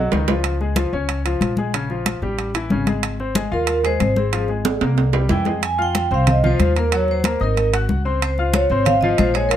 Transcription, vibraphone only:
3.53 A#4
3.86 C5
4.18 G#4
5.31 G5
5.65 G#5
5.82 G5
6.14 F5
6.31 D#5
6.46 C5
6.79 A#4
6.95 C#5
7.11 C5
7.43 A#4
8.23 C5
8.54 C#5
8.85 F5
9.01 D#5
9.18 C5
9.34 C#5
9.49 A#4

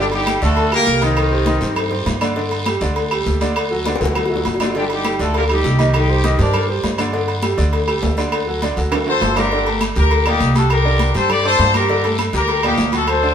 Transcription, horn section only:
0.14 G3 D#4 G4
0.42 A3 F#4 A4
0.74 A#3 G4 A#4
1.03 D#3 C4 D#4
4.77 G3 D4 G4
4.92 G3 D#4 G4
5.22 A3 F#4 A4
5.37 A#3 G4 A#4
5.51 G3 D#4 G4
5.96 G3 D#4 G4
6.40 D4 A#4 D5

